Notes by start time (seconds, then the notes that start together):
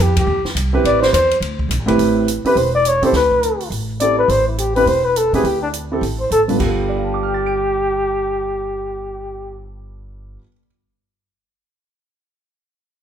0.00 F2 G4
0.17 G4, kick, ride
0.27 E2
0.44 muted upright bass stroke, snare
0.55 C2, hi-hat pedal, ride
0.73 C4 E4 G4 B4
0.84 A1 D5, ride
1.02 C5, snare
1.13 E2 C5, hi-hat pedal, ride
1.31 ride
1.40 D2, ride
1.59 kick
1.69 B1, hi-hat pedal, ride
1.79 A1
1.86 F#1 A2 C4 E4 G4 B4, ride
1.98 A1, open hi-hat
2.28 closed hi-hat
2.44 C4 E4 G4 B4, muted upright bass stroke, open hi-hat
2.56 E1 C5, open hi-hat
2.75 D5
2.85 C#5, closed hi-hat
3.02 A2 C4 E4 G4 A4 C5, open hi-hat
3.12 D2 B4, snare, open hi-hat
3.31 kick
3.43 closed hi-hat
3.60 open hi-hat
3.70 A1, open hi-hat
4.00 C4 E4 G4 A4 D5, closed hi-hat
4.19 B4
4.28 A1 C5, open hi-hat
4.48 E4
4.58 G4, closed hi-hat
4.76 C4 E4 G4 B4, open hi-hat
4.86 E1 C5, open hi-hat
5.05 B4
5.16 A4, closed hi-hat
5.33 A2 C4 E4 G4 G#4 B4, open hi-hat
5.43 D2 G4, open hi-hat
5.63 D4
5.74 closed hi-hat
5.92 C4 E4 G4 A4
6.01 A1, open hi-hat
6.20 C5
6.31 A1 A4, closed hi-hat
6.48 G2 B3 D4 F4 B4, open hi-hat
6.54 G2 G3
6.59 G1 B3 F4 G4, kick, crash
6.66 A4
6.89 D5
6.96 F5
7.04 A5
7.14 D6
7.23 F6
7.34 A6
7.46 D7